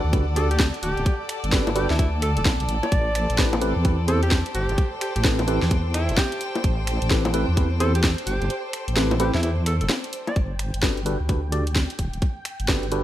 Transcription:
Already playing: string section A4 D5 F#5, string machine D5
0.04 wobble bass D2
0.13 tine electric piano D4 F#4 G4 A4 B4, kick, closed hi-hat
0.36 tine electric piano D4 F#4 G4 A4 D5, alto saxophone A4, open hi-hat
0.51 alto saxophone G4, closed hi-hat
0.60 kick, snare
0.74 closed hi-hat
0.83 wobble bass D1, alto saxophone G4, open hi-hat
0.97 wobble bass D1, closed hi-hat
1.06 kick, closed hi-hat
1.29 finger snap, open hi-hat
1.44 wobble bass G1, closed hi-hat
1.52 tine electric piano D4 F#4 G4 A4 B4, kick, snare
1.67 closed hi-hat, high bongo
1.76 tine electric piano D4 F#4 G4 A4 B4, alto saxophone G4, open hi-hat
1.90 wobble bass D2, alto saxophone E4, snare
1.99 alto saxophone E4, kick, closed hi-hat
2.22 alto saxophone A4, finger snap, open hi-hat
2.37 wobble bass D1, alto saxophone A4, closed hi-hat
2.45 wobble bass B1, kick, snare, high bongo
2.60 wobble bass B1, closed hi-hat
2.69 wobble bass A1, open hi-hat
2.83 alto saxophone D5, closed hi-hat, high bongo
2.92 wobble bass A1, string machine C5, kick, closed hi-hat
3.15 finger snap, open hi-hat
3.26 string section G5
3.30 wobble bass A1, closed hi-hat
3.38 tine electric piano C4 E4 G4 A4 B4, kick, snare
3.53 closed hi-hat, high bongo
3.61 tine electric piano C4 E4 G4 A4 B4, open hi-hat
3.76 wobble bass E2
3.85 tine electric piano C4 E4 G4 A4 B4, kick, closed hi-hat
4.08 tine electric piano C4 E4 G4 A4 C5, alto saxophone A4, open hi-hat
4.23 alto saxophone G4, closed hi-hat
4.31 kick, snare
4.46 closed hi-hat
4.55 wobble bass G1, alto saxophone G4, open hi-hat
4.69 wobble bass G1, closed hi-hat
4.78 kick, closed hi-hat
5.01 alto saxophone G4, finger snap, open hi-hat
5.16 wobble bass A1, alto saxophone G4, closed hi-hat
5.24 tine electric piano C4 E4 G4 A4 B4, kick, snare
5.39 closed hi-hat, high bongo
5.48 tine electric piano C4 E4 G4 A4 B4, open hi-hat
5.62 wobble bass E2, snare
5.71 kick, closed hi-hat
5.94 alto saxophone E4, finger snap, open hi-hat
6.09 wobble bass E1, closed hi-hat
6.18 alto saxophone G4, kick, snare, high bongo
6.32 closed hi-hat
6.41 open hi-hat
6.55 closed hi-hat, high bongo
6.64 wobble bass A1, kick, closed hi-hat
6.87 finger snap, open hi-hat
7.02 wobble bass A1, closed hi-hat
7.10 tine electric piano C4 E4 G4 A4 B4, kick, snare
7.25 closed hi-hat, high bongo
7.34 tine electric piano C4 E4 G4 A4 B4, open hi-hat
7.48 wobble bass E2
7.57 tine electric piano C4 E4 G4 A4 B4, kick, closed hi-hat
7.80 tine electric piano C4 E4 G4 A4 C5, alto saxophone A4, open hi-hat
7.95 alto saxophone G4, closed hi-hat
8.04 kick, snare
8.18 closed hi-hat
8.27 wobble bass G1, alto saxophone G4, open hi-hat
8.41 wobble bass G1, closed hi-hat
8.50 closed hi-hat
8.73 finger snap, open hi-hat
8.88 wobble bass A1, closed hi-hat
8.97 tine electric piano C4 E4 G4 A4 B4, snare
9.11 closed hi-hat, high bongo
9.20 tine electric piano C4 E4 G4 A4 B4, alto saxophone G4, open hi-hat
9.34 wobble bass E2, alto saxophone E4, snare
9.43 alto saxophone E4, closed hi-hat
9.66 alto saxophone A4, finger snap, open hi-hat
9.81 wobble bass E1, alto saxophone A4, closed hi-hat
9.89 snare, high bongo
10.04 closed hi-hat
10.13 open hi-hat
10.27 alto saxophone D5, closed hi-hat, high bongo
10.36 wobble bass G1, string machine G5, kick, closed hi-hat
10.59 finger snap, open hi-hat
10.74 wobble bass G1, closed hi-hat
10.83 tine electric piano D4 F#4 G4 A4 B4, kick, snare
10.97 closed hi-hat
11.06 tine electric piano D4 F#4 G4 A4 B4, open hi-hat
11.21 wobble bass D2
11.29 tine electric piano D4 F#4 G4 A4 B4, kick, closed hi-hat
11.52 tine electric piano D4 F#4 G4 A4 D5, open hi-hat
11.67 closed hi-hat
11.76 kick, snare
11.90 closed hi-hat
11.99 wobble bass D1, kick, open hi-hat
12.13 wobble bass D1, closed hi-hat
12.22 kick, closed hi-hat
12.45 finger snap, open hi-hat
12.60 wobble bass G1, closed hi-hat
12.68 tine electric piano D4 F#4 G4 A4 B4, kick, snare
12.83 closed hi-hat
12.92 tine electric piano D4 F#4 G4 A4 B4, open hi-hat

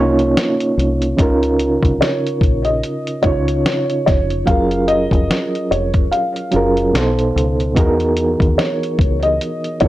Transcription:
Already playing: fingered electric bass C2, reed electric piano A#3 C#4 D#4 F4 C#5
0.19 closed hi-hat
0.37 snare, closed hi-hat
0.60 closed hi-hat
0.77 fingered electric bass C2, closed hi-hat
1.02 closed hi-hat
1.17 fingered electric bass C#2, reed electric piano C#3 C#4 D#4 F4, kick, closed hi-hat
1.22 reed electric piano A#4
1.43 closed hi-hat
1.59 closed hi-hat
1.83 fingered electric bass C2, kick, closed hi-hat
2.01 felt piano C#5, snare, closed hi-hat
2.27 closed hi-hat
2.41 fingered electric bass A#1, kick, closed hi-hat
2.65 felt piano D#5, closed hi-hat
2.83 closed hi-hat
3.07 closed hi-hat
3.22 fingered electric bass C#2, reed electric piano C#3 C#4 D#4 F4, felt piano C#5, kick, closed hi-hat
3.27 reed electric piano C#5
3.48 closed hi-hat
3.66 snare, closed hi-hat
3.90 closed hi-hat
4.06 fingered electric bass F1, felt piano C#5, kick, snare, closed hi-hat
4.30 closed hi-hat
4.46 fingered electric bass F#1, reed electric piano F#3 C#4 F4, felt piano F5, kick, closed hi-hat
4.50 reed electric piano G#4 A#4
4.71 closed hi-hat
4.88 felt piano D#5, closed hi-hat
5.11 fingered electric bass F1, kick, closed hi-hat
5.31 snare, closed hi-hat
5.55 closed hi-hat
5.71 fingered electric bass F1, felt piano C#5, closed hi-hat
5.94 kick, closed hi-hat
6.11 felt piano F5, closed hi-hat
6.36 closed hi-hat
6.51 fingered electric bass F#1, reed electric piano F#3 C#4 F4 G#4, closed hi-hat
6.56 reed electric piano A#4
6.77 closed hi-hat
6.92 fingered electric bass B1, reed electric piano B2 B3 D#4 A4, snare, closed hi-hat
6.97 reed electric piano C5
7.19 closed hi-hat
7.36 fingered electric bass C#2, closed hi-hat
7.60 closed hi-hat
7.75 fingered electric bass E2, reed electric piano E3 B3 D#4 F#4 G#4, kick, closed hi-hat
7.80 reed electric piano A#4
8.00 closed hi-hat
8.17 closed hi-hat
8.40 fingered electric bass D#2, kick, closed hi-hat
8.58 felt piano C#5, snare, closed hi-hat
8.83 closed hi-hat
8.99 fingered electric bass C#2, kick, closed hi-hat
9.23 felt piano D#5, closed hi-hat
9.41 closed hi-hat
9.64 closed hi-hat
9.80 fingered electric bass D#2, reed electric piano B3 D#4 E4 F#4, felt piano C#5, kick, closed hi-hat
9.85 reed electric piano G#4

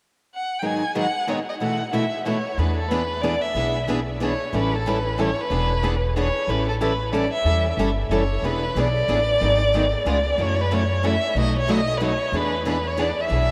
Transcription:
0.35 violin F#5
0.59 steel-string acoustic guitar G#2 D#3 F#3 B3 D#4 G#4, violin G5
0.66 violin G#5
0.95 steel-string acoustic guitar G#2 D#3 F#3 B3 D#4 G#4, violin F#5
1.28 steel-string acoustic guitar G#2 D#3 F#3 B3 D#4 G#4, violin C#5
1.49 violin D#5
1.60 steel-string acoustic guitar B2 E3 A3 E4 F#4 B4, violin F#5
1.93 steel-string acoustic guitar B2 E3 A3 E4 F#4 B4, violin E5
2.25 steel-string acoustic guitar B2 E3 A3 E4 F#4 B4, violin C#5
2.58 upright bass E2, steel-string acoustic guitar E3 B3 D4 G#4 B4, violin B4
2.77 violin A4
2.88 steel-string acoustic guitar E3 B3 D4 G#4 B4, violin B4
3.21 steel-string acoustic guitar E3 B3 D4 G#4 B4, violin D5
3.41 violin E5
3.54 upright bass B1, steel-string acoustic guitar E3 B3 D4 G#4 B4
3.87 steel-string acoustic guitar E3 B3 D4 G#4 B4
4.20 steel-string acoustic guitar E3 B3 D4 G#4 B4
4.25 violin C#5
4.52 upright bass A1, steel-string acoustic guitar E3 G3 C#4 E4 A4
4.57 violin B4
4.75 violin A4
4.86 steel-string acoustic guitar E3 G3 C#4 E4 A4, violin B4
5.18 steel-string acoustic guitar E3 G3 C#4 E4 A4, violin C#5
5.41 violin B4
5.50 upright bass E1, steel-string acoustic guitar E3 B3 D4 G#4 B4
5.83 steel-string acoustic guitar E3 B3 D4 G#4 B4
6.16 steel-string acoustic guitar E3 B3 D4 G#4 B4, violin C#5
6.47 upright bass A1, steel-string acoustic guitar E3 G3 C#4 E4 A4, violin B4
6.69 violin A4
6.81 steel-string acoustic guitar E3 G3 C#4 E4 A4, violin B4
7.14 steel-string acoustic guitar E3 G3 C#4 E4 A4, violin D5
7.32 violin E5
7.44 upright bass E2, steel-string acoustic guitar E3 G3 C#4 E4 A4
7.77 upright bass G1, steel-string acoustic guitar E3 G3 C#4 E4 A4
8.09 upright bass F#1, steel-string acoustic guitar E3 G3 C#4 E4 A4, violin C#5
8.42 upright bass E1, steel-string acoustic guitar E3 B3 D4 G#4 B4, violin B4
8.75 upright bass B1, steel-string acoustic guitar E3 B3 D4 G#4 B4
8.80 violin D5
9.08 upright bass A1, steel-string acoustic guitar E3 B3 D4 G#4 B4
9.40 upright bass G#1, steel-string acoustic guitar D#3 F#3 B3 D#4 G#4
9.73 steel-string acoustic guitar D#3 F#3 B3 D#4 G#4
10.05 upright bass C#2, steel-string acoustic guitar C#3 G#3 B3 F4 G#4
10.09 violin D5
10.38 upright bass F#2, steel-string acoustic guitar C#3 E3 F#3 A3 C#4 E4 F#4 A4
10.42 violin C#5
10.61 violin B4
10.71 steel-string acoustic guitar C#3 E3 F#3 A3 C#4 E4 F#4 A4, violin C#5
11.03 steel-string acoustic guitar C#3 E3 F#3 A3 C#4 E4 F#4 A4, violin E5
11.35 upright bass B1, steel-string acoustic guitar B2 F#3 A3 D#4 F#4 B4
11.39 violin D#5
11.59 violin C#5
11.68 steel-string acoustic guitar B2 F#3 A3 D#4 F#4 B4, violin D#5
11.98 steel-string acoustic guitar B2 F#3 A3 D#4 F#4 B4, violin B4
12.04 violin C#5
12.32 upright bass E2, steel-string acoustic guitar E3 B3 D4 G#4 B4
12.36 violin B4
12.65 steel-string acoustic guitar E3 B3 D4 G#4 B4, violin B4
12.87 violin C#5
12.97 steel-string acoustic guitar E3 B3 D4 G#4 B4, violin D5
13.20 violin E5
13.29 upright bass B1, steel-string acoustic guitar E3 B3 D4 G#4 B4

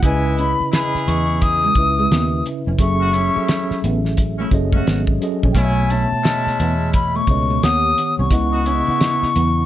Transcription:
0.03 fingered electric bass C#2, tine electric piano C#3 C#4 E4 B4 D#5, horn section G#3 B3 E4, flute G#5, kick, closed hi-hat
0.38 clean electric guitar C#4, flute B5, closed hi-hat
0.60 muted fingered electric bass stroke
0.72 horn section G#3 E4 G#4, flute B5, snare, closed hi-hat
0.95 muted fingered electric bass stroke, snare
1.08 fingered electric bass E2, clean electric guitar B3, flute C#6, closed hi-hat
1.41 flute D#6, kick, closed hi-hat
1.64 clean electric guitar G#3
1.75 fingered electric bass C#2, tine electric piano C#3 C#4 E4 B4 E5, muted clean electric guitar stroke, kick, closed hi-hat
1.99 clean electric guitar G#3
2.11 fingered electric bass D#2, clean electric guitar B3, snare, closed hi-hat
2.46 muted clean electric guitar stroke, closed hi-hat
2.67 fingered electric bass F1, clean electric guitar C#4
2.78 fingered electric bass F#1, tine electric piano F#3 C#4 G#4 A4 E5, flute C#6, kick, closed hi-hat
3.00 horn section A3 C#4 F#4
3.14 horn section A3 C#4 E4, clean electric guitar C#4, closed hi-hat
3.34 tine electric piano F#3 C#4 G#4 A4 E5, muted fingered electric bass stroke
3.48 snare, closed hi-hat
3.71 muted fingered electric bass stroke, snare
3.84 fingered electric bass A1, clean electric guitar B3, closed hi-hat
4.05 snare
4.17 kick, closed hi-hat
4.38 horn section A3 C#4 E4, clean electric guitar A3
4.51 fingered electric bass F#1, tine electric piano F#3 C#4 G#4 A4 D#5, muted clean electric guitar stroke, kick, closed hi-hat
4.73 horn section A3 C#4 F#4, clean electric guitar A3, kick
4.87 fingered electric bass G#1, clean electric guitar B3, snare, closed hi-hat
5.07 kick
5.21 tine electric piano F#3 C#4 G#4 A4 D#5, muted clean electric guitar stroke, closed hi-hat
5.43 fingered electric bass A#1, clean electric guitar C#4, kick
5.52 fingered electric bass B1, tine electric piano B2 B3, horn section A3 C#4 E4, flute G5, kick, closed hi-hat
5.56 tine electric piano A3 C#5 D#5, flute G#5
5.65 tine electric piano E5
5.90 clean electric guitar C#4, flute A5, closed hi-hat
6.12 muted fingered electric bass stroke
6.24 horn section G#3 C#4 E4, snare, closed hi-hat
6.47 muted fingered electric bass stroke, snare
6.60 fingered electric bass E2, clean electric guitar B3, closed hi-hat
6.93 flute B5, kick, closed hi-hat
7.16 clean electric guitar A3, flute C#6
7.27 fingered electric bass C#2, tine electric piano B2 B3 A4 C#5 D#5, muted clean electric guitar stroke, kick, closed hi-hat
7.50 clean electric guitar A3
7.62 fingered electric bass D#2, tine electric piano D#3 B3 G4 C#5 F#5, clean electric guitar B3, flute D#6, snare, closed hi-hat
7.98 muted clean electric guitar stroke, closed hi-hat
8.19 fingered electric bass C2, clean electric guitar C#4, flute C#6
8.30 fingered electric bass C#2, tine electric piano C#3 B3 E4 D#5 F#5, kick, closed hi-hat
8.52 horn section B3 D#4 F#4
8.65 horn section G#3 B3 E4, clean electric guitar C#4, closed hi-hat
8.87 tine electric piano C#3 B3 E4 D#5 F#5, muted fingered electric bass stroke
9.01 snare, closed hi-hat
9.22 muted fingered electric bass stroke, snare
9.36 fingered electric bass E2, clean electric guitar B3, closed hi-hat

